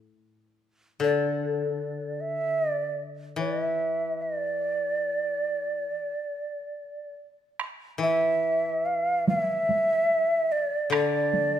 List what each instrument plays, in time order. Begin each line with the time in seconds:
1.00 koto D3, shakuhachi D5
2.21 shakuhachi E5
2.71 shakuhachi D5
3.36 koto E3, shakuhachi D5
3.62 shakuhachi E5
4.21 shakuhachi D5
7.60 taiko rim
7.98 koto E3
8.03 shakuhachi E5
8.86 shakuhachi F5
9.28 shakuhachi E5, taiko high
9.69 taiko high
10.52 shakuhachi D5
10.90 koto D3, shakuhachi D5, taiko rim
11.34 taiko high